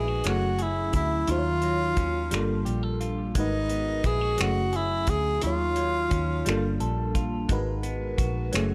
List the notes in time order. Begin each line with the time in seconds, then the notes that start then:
Already playing: A#1 G#3 B3 D#4 F#4 G#4 A#4 B4
0.08 F#4
0.24 F#1 F#3 C#4 E4 G#4, finger snap, closed hi-hat
0.28 A3 F#4
0.59 E4 G#4, closed hi-hat
0.93 D2 E4, kick, closed hi-hat
1.27 D#2 D#3 F#3 D#4 F4, closed hi-hat
1.31 C5
1.38 C#5
1.62 F#3, closed hi-hat
1.97 D#2 C#4, kick, closed hi-hat
2.30 G1 G3 D4 F4, finger snap, closed hi-hat
2.35 A#3 A4
2.65 A#1 G4, closed hi-hat
2.83 A4
3.01 F4, closed hi-hat
3.35 G#1 G#3 D#4 F#4 A#4, kick, closed hi-hat
3.39 D#4 B4
3.69 B3, closed hi-hat
4.04 A#1 E4 G#4, kick, closed hi-hat
4.21 F#4
4.38 F#1 F#3 C#4 E4 F#4, finger snap, closed hi-hat
4.42 A3 G#4
4.73 E4 G#4, closed hi-hat
5.07 D2 E4 G#4, kick, closed hi-hat
5.42 D#2 D#3 D#4 F4, closed hi-hat
5.46 F#3 C#5
5.76 F#3, closed hi-hat
6.10 D#2 C#4, kick, closed hi-hat
6.45 G1 G3 D4 F4, finger snap, closed hi-hat
6.49 A#3 A4
6.80 A#1 A4, closed hi-hat
7.15 F4, kick, closed hi-hat
7.49 G#1 G#3 D#4 F#4 A#4, kick, closed hi-hat
7.53 B4
7.83 B3, closed hi-hat
8.18 A#1 F#4, kick, closed hi-hat
8.52 F#1 F#3 A3 C#4 E4 G#4, finger snap, closed hi-hat